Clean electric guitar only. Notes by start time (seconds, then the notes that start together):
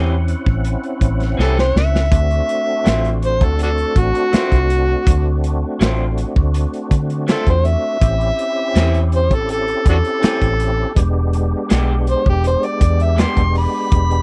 Already playing: E3 C4 C#4 G4
1.37 E3 C4 C#4 G4
2.85 F#3 A3 C4 F4
4.32 F#3 A3 C4 F4
5.80 F#3 A3 C4 F4
7.27 F#3 A3 C4 F4
8.75 E3 C4 C#4 G4
10.22 E3 C4 C#4 G4
11.69 G#3 B3 D4 G4
13.17 G#3 B3 D4 G4